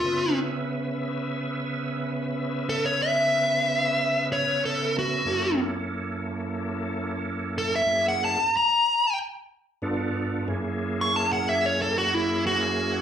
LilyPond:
<<
  \new Staff \with { instrumentName = "Lead electric guitar" } { \time 4/4 \key fis \mixolydian \tempo 4 = 92 eis'8 r2. r8 | a'16 cis''16 e''2 cis''8 a'8 fis'8~ | fis'8 r2. a'16 e''16~ | e''16 fis''16 a''8 ais''4 r2 |
r8. cis'''16 a''16 fis''16 e''16 cis''16 a'16 fis'16 e'8 fis'4 | }
  \new Staff \with { instrumentName = "Tonewheel organ" } { \time 4/4 \key fis \mixolydian <cis b cis' b' e''>1~ | <cis b cis' b' e''>1 | <fis, ais cis' e' a'>1 | <fis, ais cis' e' gis'>4 r2 <g, b d' f' a'>4 |
<fis, ais cis' e' gis'>1 | }
>>